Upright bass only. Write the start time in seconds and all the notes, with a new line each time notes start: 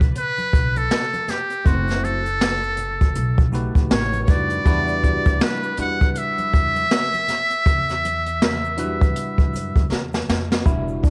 0.53 B1
1.66 F#1
3.16 B1
3.75 A1
3.91 A1
4.28 F2
4.66 E2
5.26 D2
5.78 E2
6.53 E2
7.66 E2
9.53 F#2
9.76 E2
9.91 E2
10.29 F2
10.66 E1